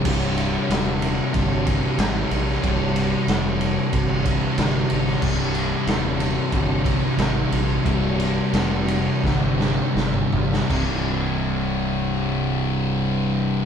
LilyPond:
<<
  \new Staff \with { instrumentName = "Distorted electric guitar" } { \clef bass \time 4/4 \key des \lydian \tempo 4 = 92 <c, g, c>1 | <c, g, c>1 | <c, g, c>1 | <c, g, c>1 |
<c, g, c>1 | }
  \new Staff \with { instrumentName = "Distorted electric guitar" } { \clef bass \time 4/4 \key des \lydian <c, g, c>2~ <c, g, c>8 <c, g, c>8 <c, g, c>4 | <c, g, c>2~ <c, g, c>8 <c, g, c>8 <c, g, c>4 | <c, g, c>2~ <c, g, c>8 <c, g, c>8 <c, g, c>4 | <c, g, c>2~ <c, g, c>8 <c, g, c>8 <c, g, c>4 |
<c, g, c>1 | }
  \new Staff \with { instrumentName = "Distorted electric guitar" } { \clef bass \time 4/4 \key des \lydian <c, g, c>2 <c, g, c>2 | <c, g, c>2 <c, g, c>2 | <c, g, c>2 <c, g, c>2 | <c, g, c>2 <c, g, c>2 |
<c, g, c>1 | }
  \new Staff \with { instrumentName = "Fingered electric bass" } { \clef bass \time 4/4 \key des \lydian c,,4 ees,,4 g,,4 aes,,8 bes,,8 | c,,4 f,,4 g,,4 g,,8 g,,8 | c,,4 ees,,4 g,,4 aes,,8 bes,,8 | c,,4 f,,4 g,,4 g,,8 g,,8 |
c,,1 | }
  \new DrumStaff \with { instrumentName = "Drums" } \drummode { \time 4/4 <cymc bd cymr>8 cymr8 <cymr sn>8 cymr8 <bd cymr>8 <bd cymr>8 <cymr sn>8 cymr16 sn16 | <bd cymr>8 cymr8 <cymr sn>8 cymr8 <bd cymr>8 <bd cymr>8 <cymr sn>8 cymr16 sn16 | <cymc bd>8 cymr8 <cymr sn>8 cymr8 <bd cymr>8 <bd cymr>8 <cymr sn>8 cymr8 | <bd cymr>8 cymr8 <cymr sn>8 cymr8 <bd sn>8 sn8 sn16 toml16 tomfh16 sn16 |
<cymc bd>4 r4 r4 r4 | }
>>